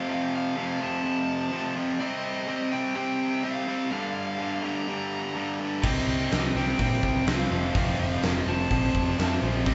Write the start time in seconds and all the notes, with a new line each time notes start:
Already playing: F3 C4 G4 F5
0.08 F2 C3 F3 F5
0.35 F5
0.56 F2 C3 F3
0.81 F2 C3 F3 A5
1.04 F2 C3 F3
1.52 F2 C3 F3
1.75 F2 C3 F3
2.00 C3 G3 C4 D#5
2.47 C3 G3 C4
2.72 C3 G3 C4 G5
2.95 C3 G3 C4 G5
3.43 C3 G3 C4 F5
3.67 C3 G3 C4
3.91 G2 D3 G3 A3 D4 F5
4.14 F5
4.39 G2 D3 G3
4.63 G2 D3 G3 A#5
4.87 G2 D3 G3
5.35 G2 D3 G3
5.60 G2 D3 G3
5.84 C2 C3 G3 C4 G4 D#5, kick, crash
6.07 C2
6.31 C2 C3 G3 C4, snare, open hi-hat
6.55 C2 C3 G3 C4 G5, snare
6.79 A#2 C3 G3 C4 G5, kick, open hi-hat
7.03 C2 G5, kick
7.27 C2 C3 G3 C4 F5, snare, open hi-hat
7.50 F1 F2 C3 F3 C4
7.74 F1 F2 C3 F3 F5, kick, open hi-hat
7.99 F1 F5
8.23 F1 F2 C3 F3, snare, open hi-hat
8.47 F1 F2 C3 F3 A5
8.70 A#1 F2 C3 F3, kick, open hi-hat
8.95 F1, kick
9.18 F2 C3 F3, snare, open hi-hat
9.42 A#1 F2 C3 F3
9.65 C2 C3 G3 C4 D#5, kick, open hi-hat